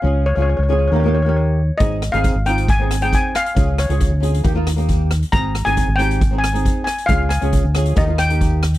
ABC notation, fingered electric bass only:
X:1
M:4/4
L:1/16
Q:1/4=136
K:Ab
V:1 name="Fingered electric bass" clef=bass
D,,3 D,,2 D,,3 E,,8 | A,,,3 A,,,2 A,,,8 z3 | D,,3 D,,2 =D,,3 E,,8 | A,,,3 A,,,2 A,,,8 z3 |
D,,3 D,,2 =D,,3 E,,8 |]